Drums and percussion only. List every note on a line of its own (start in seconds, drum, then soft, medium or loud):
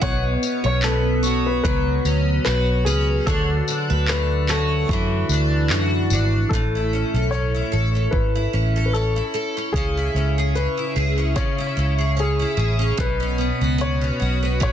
0.02 kick loud
0.43 tambourine medium
0.82 clap loud
1.24 tambourine medium
1.65 kick loud
2.05 tambourine medium
2.46 clap loud
2.87 tambourine medium
3.27 kick loud
3.68 tambourine medium
4.08 clap loud
4.49 clap loud
4.49 tambourine medium
4.89 kick medium
5.29 tambourine medium
5.70 clap loud
6.10 tambourine medium
6.51 kick loud
8.13 kick medium
9.74 kick medium
11.36 kick medium
12.98 kick medium
14.61 kick medium